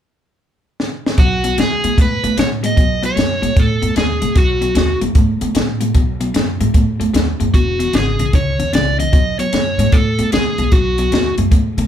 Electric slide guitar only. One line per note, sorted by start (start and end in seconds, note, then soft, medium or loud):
1.19 1.60 F#4 medium
1.60 2.00 G#4 medium
2.02 2.39 B4 medium
2.40 2.46 C#5 loud
2.66 3.05 D#5 loud
3.06 3.60 C#5 loud
3.59 3.97 A4 medium
3.98 4.38 G#4 medium
4.38 4.99 F#4 medium
7.55 7.96 F#4 medium
7.95 8.36 G#4 medium
8.35 8.75 C#5 medium
8.75 8.99 D5 loud
9.00 9.40 D#5 loud
9.40 9.95 C#5 loud
9.93 10.33 A4 medium
10.33 10.74 G#4 medium
10.72 11.34 F#4 medium